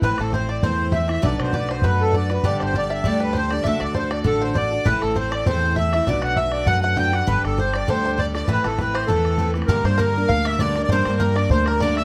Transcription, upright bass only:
X:1
M:4/4
L:1/16
Q:"Swing" 1/4=199
K:Ador
V:1 name="Upright bass" clef=bass
A,,, z A,,,6 E,,8 | B,,, z B,,,6 F,,8 | G,,, z G,,,6 D,,8 | D,, z D,,6 A,,,8 |
A,,, z A,,,6 E,,8 | B,,, z B,,,6 F,,8 | G,,, z G,,,6 D,,8 | A,,, z A,,,6 E,,8 |
[K:Gdor] G,,2 G,,6 D,,8 | G,,2 G,,6 D,,8 |]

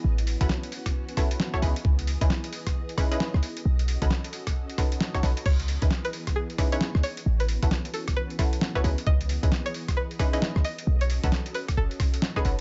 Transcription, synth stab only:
X:1
M:4/4
L:1/16
Q:"Swing 16ths" 1/4=133
K:C#m
V:1 name="Synth stab"
z3 [CEFAB] z6 [CEFAB]3 [CEFAc] [CDEGB] z | z3 [CDEGB] z6 [CDEGB] [CDEGB]3 z2 | z3 [CDFAB] z6 [CDFAB]3 [CDFAc] [CDFAB] z | z3 [CDEGB] z6 [CDEGB] [CDEGB]4- [CDEGB] |
z3 [CEFAB] z6 [CEFAB]3 [CEFAc] [CDEGB] z | z3 [CDEGB] z6 [CDEGB] [CDEGB]3 z2 | z3 [CDFAB] z8 z [CDFAB] [CDFAB] z |]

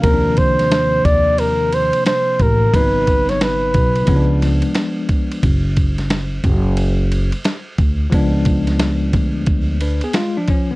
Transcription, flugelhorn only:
X:1
M:4/4
L:1/16
Q:"Swing 16ths" 1/4=89
K:C#m
V:1 name="Flugelhorn"
^A2 ^B4 =d2 A2 B2 B2 A2 | B3 c B6 z6 | z16 | z16 |]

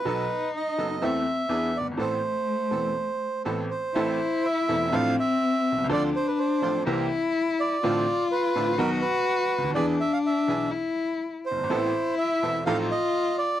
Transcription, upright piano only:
X:1
M:4/4
L:1/16
Q:1/4=124
K:Am
V:1 name="Upright piano" clef=bass
[B,,,B,,^F,B,^DA]2 z4 [^F,,,^F,,F,B,DA]2 [E,,E,A,CA]2 z2 [E,,E,B,=D^G]2 z/2 F,,,/2 =G,,,/2 ^G,,,/2 | [A,,,A,,E,B,CA]2 z4 [E,,,E,,E,B,CA]2 z4 [A,,,A,,E,B,CA]2 z2 | [A,,,A,,E,A,CA]2 z4 [E,,,E,,E,A,CA]2 [A,,,A,,F,CDA]2 z4 z/2 B,,,/2 C,,/2 ^C,,/2 | [D,,D,F,CDA]2 z4 [A,,,A,,F,CDA]2 [C,,C,E,_B,CG]2 z6 |
[A,,,A,,D,A,CF]2 z4 [A,,,A,,D,A,CF]2 [B,,,B,,^D,^F,B,^F]2 z4 z/2 ^C,,/2 =D,,/2 ^D,,/2 | [E,,E,B,D^G]2 z4 [B,,,B,,E,B,DG]2 z6 z/2 ^F,,,/2 =G,,,/2 ^G,,,/2 | [A,,,A,,E,B,CA]2 z4 [E,,,E,,E,B,CA]2 [A,,,A,,F,C_EA]2 z6 |]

